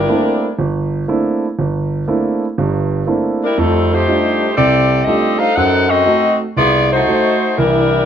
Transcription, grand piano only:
0, 0, Header, 1, 2, 480
1, 0, Start_track
1, 0, Tempo, 498339
1, 1524, Time_signature, 4, 2, 24, 8
1, 7757, End_track
2, 0, Start_track
2, 0, Title_t, "Grand piano"
2, 0, Program_c, 0, 0
2, 82, Note_on_c, 0, 57, 51
2, 86, Note_on_c, 0, 58, 43
2, 89, Note_on_c, 0, 60, 42
2, 89, Note_on_c, 0, 62, 42
2, 93, Note_on_c, 0, 64, 47
2, 426, Note_off_c, 0, 57, 0
2, 429, Note_off_c, 0, 58, 0
2, 430, Note_off_c, 0, 60, 0
2, 430, Note_off_c, 0, 62, 0
2, 432, Note_off_c, 0, 64, 0
2, 564, Note_on_c, 0, 31, 69
2, 982, Note_off_c, 0, 31, 0
2, 1040, Note_on_c, 0, 58, 42
2, 1042, Note_on_c, 0, 57, 47
2, 1046, Note_on_c, 0, 60, 45
2, 1047, Note_on_c, 0, 62, 44
2, 1049, Note_on_c, 0, 64, 53
2, 1386, Note_off_c, 0, 58, 0
2, 1387, Note_off_c, 0, 57, 0
2, 1388, Note_off_c, 0, 60, 0
2, 1389, Note_off_c, 0, 62, 0
2, 1390, Note_off_c, 0, 64, 0
2, 1528, Note_on_c, 0, 31, 62
2, 1944, Note_off_c, 0, 31, 0
2, 2000, Note_on_c, 0, 58, 44
2, 2000, Note_on_c, 0, 60, 40
2, 2000, Note_on_c, 0, 62, 44
2, 2001, Note_on_c, 0, 57, 48
2, 2006, Note_on_c, 0, 64, 46
2, 2345, Note_off_c, 0, 58, 0
2, 2345, Note_off_c, 0, 60, 0
2, 2345, Note_off_c, 0, 62, 0
2, 2346, Note_off_c, 0, 57, 0
2, 2348, Note_off_c, 0, 64, 0
2, 2485, Note_on_c, 0, 43, 66
2, 2488, Note_on_c, 0, 31, 66
2, 2902, Note_off_c, 0, 43, 0
2, 2904, Note_off_c, 0, 31, 0
2, 2954, Note_on_c, 0, 57, 46
2, 2956, Note_on_c, 0, 58, 43
2, 2959, Note_on_c, 0, 60, 39
2, 2962, Note_on_c, 0, 62, 42
2, 2963, Note_on_c, 0, 64, 47
2, 3302, Note_off_c, 0, 57, 0
2, 3303, Note_off_c, 0, 58, 0
2, 3304, Note_off_c, 0, 60, 0
2, 3306, Note_off_c, 0, 62, 0
2, 3307, Note_off_c, 0, 64, 0
2, 3446, Note_on_c, 0, 41, 59
2, 3446, Note_on_c, 0, 57, 66
2, 3863, Note_off_c, 0, 41, 0
2, 3863, Note_off_c, 0, 57, 0
2, 3932, Note_on_c, 0, 57, 41
2, 3933, Note_on_c, 0, 55, 42
2, 3935, Note_on_c, 0, 62, 45
2, 3938, Note_on_c, 0, 63, 39
2, 3942, Note_on_c, 0, 65, 50
2, 4271, Note_off_c, 0, 55, 0
2, 4271, Note_off_c, 0, 57, 0
2, 4273, Note_off_c, 0, 62, 0
2, 4274, Note_off_c, 0, 63, 0
2, 4276, Note_off_c, 0, 65, 0
2, 4406, Note_on_c, 0, 48, 68
2, 4411, Note_on_c, 0, 36, 64
2, 4823, Note_off_c, 0, 48, 0
2, 4825, Note_off_c, 0, 36, 0
2, 4885, Note_on_c, 0, 55, 44
2, 4885, Note_on_c, 0, 62, 39
2, 4886, Note_on_c, 0, 57, 47
2, 4889, Note_on_c, 0, 63, 38
2, 4889, Note_on_c, 0, 65, 46
2, 5227, Note_off_c, 0, 55, 0
2, 5227, Note_off_c, 0, 62, 0
2, 5228, Note_off_c, 0, 57, 0
2, 5229, Note_off_c, 0, 63, 0
2, 5230, Note_off_c, 0, 65, 0
2, 5365, Note_on_c, 0, 42, 66
2, 5782, Note_off_c, 0, 42, 0
2, 5836, Note_on_c, 0, 57, 51
2, 5842, Note_on_c, 0, 63, 39
2, 5848, Note_on_c, 0, 66, 49
2, 6183, Note_off_c, 0, 57, 0
2, 6186, Note_off_c, 0, 63, 0
2, 6190, Note_off_c, 0, 66, 0
2, 6324, Note_on_c, 0, 36, 68
2, 6743, Note_off_c, 0, 36, 0
2, 6812, Note_on_c, 0, 57, 49
2, 6815, Note_on_c, 0, 63, 41
2, 6821, Note_on_c, 0, 66, 51
2, 7152, Note_off_c, 0, 57, 0
2, 7154, Note_off_c, 0, 63, 0
2, 7157, Note_off_c, 0, 66, 0
2, 7301, Note_on_c, 0, 36, 64
2, 7301, Note_on_c, 0, 52, 58
2, 7713, Note_off_c, 0, 36, 0
2, 7713, Note_off_c, 0, 52, 0
2, 7757, End_track
0, 0, End_of_file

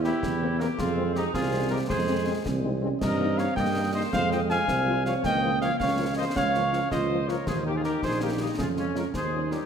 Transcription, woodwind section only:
0, 0, Header, 1, 2, 480
1, 0, Start_track
1, 0, Tempo, 371425
1, 1012, Time_signature, 6, 3, 24, 8
1, 12480, End_track
2, 0, Start_track
2, 0, Title_t, "Woodwind section"
2, 0, Program_c, 0, 71
2, 69, Note_on_c, 0, 64, 74
2, 731, Note_off_c, 0, 64, 0
2, 772, Note_on_c, 0, 67, 75
2, 1012, Note_off_c, 0, 67, 0
2, 1025, Note_on_c, 0, 60, 71
2, 1466, Note_off_c, 0, 60, 0
2, 1512, Note_on_c, 0, 63, 83
2, 1726, Note_off_c, 0, 63, 0
2, 1732, Note_on_c, 0, 65, 73
2, 2179, Note_off_c, 0, 65, 0
2, 2216, Note_on_c, 0, 67, 79
2, 2323, Note_off_c, 0, 67, 0
2, 2452, Note_on_c, 0, 68, 78
2, 3122, Note_off_c, 0, 68, 0
2, 3894, Note_on_c, 0, 70, 85
2, 4340, Note_off_c, 0, 70, 0
2, 4375, Note_on_c, 0, 73, 87
2, 4614, Note_off_c, 0, 73, 0
2, 4622, Note_on_c, 0, 75, 79
2, 5097, Note_off_c, 0, 75, 0
2, 5108, Note_on_c, 0, 72, 80
2, 5324, Note_off_c, 0, 72, 0
2, 5343, Note_on_c, 0, 72, 86
2, 5561, Note_off_c, 0, 72, 0
2, 5584, Note_on_c, 0, 75, 80
2, 5689, Note_off_c, 0, 75, 0
2, 5828, Note_on_c, 0, 77, 90
2, 6490, Note_off_c, 0, 77, 0
2, 6548, Note_on_c, 0, 73, 74
2, 6780, Note_off_c, 0, 73, 0
2, 6784, Note_on_c, 0, 75, 81
2, 7225, Note_off_c, 0, 75, 0
2, 7276, Note_on_c, 0, 73, 80
2, 7378, Note_off_c, 0, 73, 0
2, 7503, Note_on_c, 0, 73, 75
2, 7944, Note_off_c, 0, 73, 0
2, 7980, Note_on_c, 0, 72, 70
2, 8200, Note_off_c, 0, 72, 0
2, 8219, Note_on_c, 0, 73, 84
2, 8885, Note_off_c, 0, 73, 0
2, 8927, Note_on_c, 0, 72, 78
2, 9410, Note_off_c, 0, 72, 0
2, 9415, Note_on_c, 0, 70, 64
2, 9654, Note_off_c, 0, 70, 0
2, 9654, Note_on_c, 0, 68, 71
2, 9762, Note_off_c, 0, 68, 0
2, 9905, Note_on_c, 0, 67, 70
2, 10011, Note_off_c, 0, 67, 0
2, 10026, Note_on_c, 0, 65, 56
2, 10077, Note_off_c, 0, 65, 0
2, 10139, Note_on_c, 0, 67, 75
2, 10359, Note_off_c, 0, 67, 0
2, 10385, Note_on_c, 0, 68, 64
2, 10603, Note_off_c, 0, 68, 0
2, 10633, Note_on_c, 0, 67, 62
2, 10847, Note_off_c, 0, 67, 0
2, 10861, Note_on_c, 0, 63, 58
2, 11080, Note_off_c, 0, 63, 0
2, 11099, Note_on_c, 0, 65, 63
2, 11205, Note_off_c, 0, 65, 0
2, 11347, Note_on_c, 0, 61, 62
2, 11564, Note_off_c, 0, 61, 0
2, 11592, Note_on_c, 0, 70, 67
2, 11696, Note_off_c, 0, 70, 0
2, 11834, Note_on_c, 0, 68, 68
2, 12270, Note_off_c, 0, 68, 0
2, 12290, Note_on_c, 0, 67, 59
2, 12480, Note_off_c, 0, 67, 0
2, 12480, End_track
0, 0, End_of_file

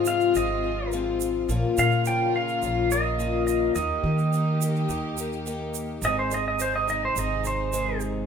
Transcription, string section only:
0, 0, Header, 1, 2, 480
1, 0, Start_track
1, 0, Key_signature, -4, "major"
1, 0, Tempo, 567108
1, 1265, Time_signature, 4, 2, 24, 8
1, 6992, End_track
2, 0, Start_track
2, 0, Title_t, "String section"
2, 0, Program_c, 0, 48
2, 0, Note_on_c, 0, 48, 80
2, 0, Note_on_c, 0, 56, 67
2, 0, Note_on_c, 0, 65, 87
2, 1242, Note_off_c, 0, 65, 0
2, 1247, Note_off_c, 0, 48, 0
2, 1249, Note_off_c, 0, 56, 0
2, 1252, Note_on_c, 0, 65, 88
2, 1254, Note_on_c, 0, 58, 73
2, 1255, Note_on_c, 0, 49, 77
2, 3159, Note_off_c, 0, 65, 0
2, 3161, Note_off_c, 0, 49, 0
2, 3183, Note_on_c, 0, 67, 80
2, 3185, Note_on_c, 0, 51, 76
2, 5065, Note_off_c, 0, 58, 0
2, 5085, Note_off_c, 0, 51, 0
2, 5085, Note_off_c, 0, 67, 0
2, 5107, Note_on_c, 0, 63, 82
2, 5113, Note_on_c, 0, 48, 77
2, 5115, Note_on_c, 0, 56, 68
2, 6992, Note_off_c, 0, 48, 0
2, 6992, Note_off_c, 0, 56, 0
2, 6992, Note_off_c, 0, 63, 0
2, 6992, End_track
0, 0, End_of_file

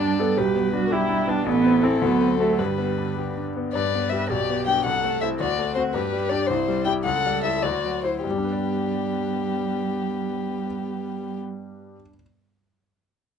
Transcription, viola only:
0, 0, Header, 1, 2, 480
1, 0, Start_track
1, 0, Key_signature, 1, "major"
1, 0, Tempo, 364964
1, 484, Time_signature, 6, 3, 24, 8
1, 2404, Tempo, 380711
1, 5284, Tempo, 366524
1, 9124, Tempo, 400534
1, 16723, End_track
2, 0, Start_track
2, 0, Title_t, "Viola"
2, 0, Program_c, 0, 41
2, 0, Note_on_c, 0, 62, 65
2, 249, Note_on_c, 0, 69, 59
2, 269, Note_off_c, 0, 62, 0
2, 482, Note_on_c, 0, 67, 60
2, 501, Note_off_c, 0, 69, 0
2, 957, Note_off_c, 0, 67, 0
2, 965, Note_on_c, 0, 66, 70
2, 1210, Note_on_c, 0, 64, 70
2, 1230, Note_off_c, 0, 66, 0
2, 1694, Note_on_c, 0, 62, 73
2, 1714, Note_off_c, 0, 64, 0
2, 1926, Note_off_c, 0, 62, 0
2, 1933, Note_on_c, 0, 59, 84
2, 2412, Note_on_c, 0, 60, 71
2, 2431, Note_off_c, 0, 59, 0
2, 2629, Note_off_c, 0, 60, 0
2, 2637, Note_on_c, 0, 59, 69
2, 3107, Note_off_c, 0, 59, 0
2, 3118, Note_on_c, 0, 57, 63
2, 3356, Note_on_c, 0, 55, 57
2, 3375, Note_off_c, 0, 57, 0
2, 4088, Note_off_c, 0, 55, 0
2, 5283, Note_on_c, 0, 55, 50
2, 5463, Note_off_c, 0, 55, 0
2, 6007, Note_on_c, 0, 55, 43
2, 6185, Note_off_c, 0, 55, 0
2, 6726, Note_on_c, 0, 57, 49
2, 6903, Note_off_c, 0, 57, 0
2, 7434, Note_on_c, 0, 60, 41
2, 7610, Note_off_c, 0, 60, 0
2, 8153, Note_on_c, 0, 62, 49
2, 8329, Note_off_c, 0, 62, 0
2, 8874, Note_on_c, 0, 64, 51
2, 9059, Note_off_c, 0, 64, 0
2, 9593, Note_on_c, 0, 67, 47
2, 9766, Note_off_c, 0, 67, 0
2, 10315, Note_on_c, 0, 66, 39
2, 10500, Note_off_c, 0, 66, 0
2, 10558, Note_on_c, 0, 59, 38
2, 14345, Note_off_c, 0, 59, 0
2, 16723, End_track
0, 0, End_of_file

